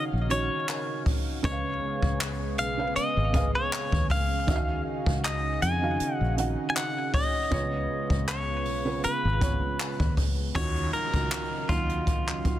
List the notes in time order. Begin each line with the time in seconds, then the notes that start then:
Already playing: C#3 D#3 C#4 D#4 F#4 G#4 C#5 F5
0.13 A#1
0.29 D#3 C#4 F#4 C#5, closed hi-hat
0.68 A#4, clap, closed hi-hat
1.06 kick, open hi-hat
1.43 C#2 C#3 G#3 B3 C#4 G#4 B4 C#5 D#5, kick, closed hi-hat
1.52 F5
2.03 C#2, kick
2.20 clap, closed hi-hat
2.58 B1 F5, closed hi-hat
2.77 C#3 C#4 B4 F5
2.96 D#5, muted fingered electric bass stroke, closed hi-hat
3.17 G#1
3.33 C#3 C#4 B4 F5, kick, closed hi-hat
3.55 C#5
3.72 clap, closed hi-hat
3.92 D#2, kick
4.10 C#2 F5, kick, open hi-hat
4.47 D#2 D#3 C#4 D#4 F#4 E5, kick, closed hi-hat
4.56 F5
5.06 C#2, kick
5.24 D#5, clap, closed hi-hat
5.62 F2 G#5, closed hi-hat
5.81 D#3 C#4 F#4 F5
6.00 muted fingered electric bass stroke, closed hi-hat
6.15 F#5
6.21 A#1
6.37 D#3 C#4 F#4 F#5, closed hi-hat
6.70 G#5
6.76 F#5, clap, closed hi-hat
7.14 C#5 D#5, kick, open hi-hat
7.51 C#2 C#3 G#3 B3 F4 C#5, kick, closed hi-hat
8.10 C#2, kick
8.27 C#5, clap, closed hi-hat
8.65 B1, open hi-hat
8.85 C#3 B3 F4 B4
9.04 B4, muted fingered electric bass stroke, closed hi-hat
9.25 G#1
9.40 C#3 B3 F4 C#5, kick, closed hi-hat
9.79 clap, closed hi-hat
10.00 D#2, kick
10.17 C#2, kick, open hi-hat
10.55 D#2 C#3 D#3 F#3 C#4 D#4 F4 F#4 C#5 F5, kick, closed hi-hat, downlifter
10.76 closed hi-hat
10.93 A#4, closed hi-hat
11.13 C#2 D#3 C#4 F4 F#4, kick, closed hi-hat
11.32 clap
11.68 D#2 D#3 F#3 C#4 F4, kick, closed hi-hat
11.89 closed hi-hat
12.07 kick, closed hi-hat
12.28 clap
12.44 D#3 F#3 C#4 F4, muted fingered electric bass stroke, kick, closed hi-hat